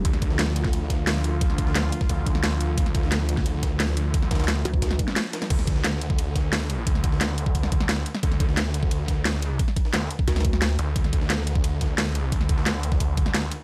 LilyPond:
<<
  \new Staff \with { instrumentName = "Analog synth pad" } { \time 4/4 \key d \minor \tempo 4 = 176 <f a d' f'>1~ | <f a d' f'>1~ | <f a d' f'>1~ | <f a d' f'>1 |
r1 | r1 | r1 | r1 |
r1 | r1 | }
  \new Staff \with { instrumentName = "Detuned saw bass" } { \clef bass \time 4/4 \key d \minor d,1 | d,4. r8 d,4. d,8 | d,1 | d,4. r2 r8 |
d,2~ d,8 d,4. | d,2~ d,8 d,4 r8 | d,2~ d,8 d,4. | r4 d,8 r2 d,8 |
d,2~ d,8 d,4. | d,2~ d,8 d,4 r8 | }
  \new Staff \with { instrumentName = "Wobble bass" } { \clef bass \time 4/4 \key d \minor r1 | r1 | r1 | r4. d,4. r4 |
r1 | r1 | r1 | r2 d,4. r8 |
r1 | r1 | }
  \new DrumStaff \with { instrumentName = "Drums" } \drummode { \time 4/4 <hh bd cymr>16 <cymr sn>16 <hh bd cymr>16 sn16 <hh cymr sn>16 sn16 <hh cymr>16 <bd sn>16 <hh cymr>8 <hh bd cymr sn>8 <hh hho sn>16 sn16 <hh cymr>8 | <hh bd cymr>16 sn16 <hh bd cymr>16 sn16 <hh cymr sn>8 <hh cymr>16 <bd sn>16 <hh bd cymr>8 <hh bd cymr>16 sn16 <hh cymr sn>16 cymr16 <hh cymr>8 | <hh bd cymr>16 <cymr sn>16 <hh bd cymr>16 sn16 <hh cymr sn>16 sn16 <hh cymr>16 <bd sn>16 <hh cymr>8 <hh bd cymr sn>8 <hh hho sn>16 sn16 <hh cymr>8 | <hh bd cymr>16 sn16 <hh bd cymr sn>32 <cymr sn>32 <cymr sn>32 <cymr sn>32 <hh cymr sn>8 <hh cymr>16 bd16 <hh bd cymr sn>16 sn16 <hh bd cymr>16 sn16 <hh cymr sn>8 <hh cymr sn>16 <cymr sn>16 |
<cymc hh bd cymr>16 <cymr sn>16 <hh bd cymr>16 sn16 <hh cymr sn>16 sn16 <hh cymr>16 bd16 <hh cymr>8 <hh bd cymr sn>8 <hh hho sn>16 sn16 <hh cymr>8 | <hh bd cymr>16 sn16 <hh bd cymr>16 sn16 <hh cymr sn>8 <hh cymr>16 bd16 <hh bd cymr>16 sn16 <hh bd cymr>16 sn16 <hh cymr sn>16 cymr16 <hh cymr>16 sn16 | <hh bd cymr>16 <cymr sn>16 <hh bd cymr>16 sn16 <hh cymr sn>16 sn16 <hh cymr>16 bd16 <hh cymr>8 <hh bd cymr sn>8 <hh hho sn>16 sn16 <hh cymr>8 | <hh bd cymr>16 sn16 <hh bd cymr>16 sn16 <hh cymr sn>8 <hh cymr>16 bd16 <hh bd cymr sn>16 <cymr sn>32 <cymr sn>32 <hh bd cymr>16 sn16 <hh cymr sn>16 cymr16 <hh cymr>8 |
<hh bd cymr>16 <cymr sn>16 <hh bd cymr>16 sn16 <hh cymr sn>16 sn16 <hh cymr>16 bd16 <hh cymr>8 <hh bd cymr sn>8 <hh hho sn>16 sn16 <hh cymr>8 | <hh bd cymr>16 sn16 <hh bd cymr>16 sn16 <hh cymr sn>8 <hh cymr>16 <bd sn>16 <hh bd cymr>8 <hh bd cymr>16 sn16 <hh cymr sn>16 cymr16 <hh cymr>8 | }
>>